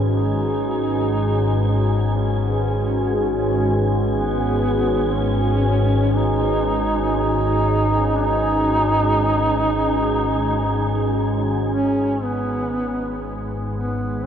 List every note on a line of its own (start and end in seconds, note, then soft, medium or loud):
0.00 12.24 G#1 medium
0.00 12.23 G#2 medium
0.00 0.17 C#4 medium
0.00 12.23 C#4 medium
0.00 12.23 F#4 medium
0.00 12.25 G#4 medium
0.00 12.24 B4 medium
0.00 12.24 D#5 medium
0.00 12.24 G#5 medium
0.16 1.66 D#4 loud
1.68 2.19 D#4 medium
2.17 3.16 C#4 medium
3.16 3.85 C#4 medium
4.16 5.16 B3 loud
5.14 6.17 C#4 loud
6.16 7.15 D#4 loud
7.17 8.11 D#4 loud
8.16 11.17 D#4 loud
11.71 12.24 C#4 loud
12.21 14.26 G#1 medium
12.21 14.26 G#2 medium
12.21 14.26 G#3 medium
12.21 13.25 B3 medium
12.92 14.26 C#4 medium
13.70 14.26 B4 medium
13.74 14.26 B3 medium
13.89 14.26 D#5 medium
14.09 14.26 F#4 medium